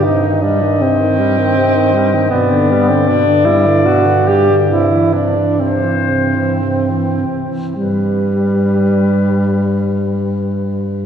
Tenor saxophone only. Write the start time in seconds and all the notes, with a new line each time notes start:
0.06 C3
0.24 D#3
0.43 G3
0.62 D#3
0.81 C3
0.99 D#3
1.19 G3
1.38 D#3
1.57 C3
1.75 D#3
1.94 G3
2.14 D#3
2.32 B2
2.51 D3
2.71 G3
2.90 D3
3.08 B2
3.27 D3
3.45 G3
3.66 D3
3.85 B2
4.06 D3
4.28 G3
4.50 D3
4.70 C3
4.92 E3
5.13 C3
5.36 E3
5.60 C3
5.84 E3
6.09 C3
6.35 E3
6.62 C3
6.90 E3
7.19 C3
7.48 E3
7.76 G3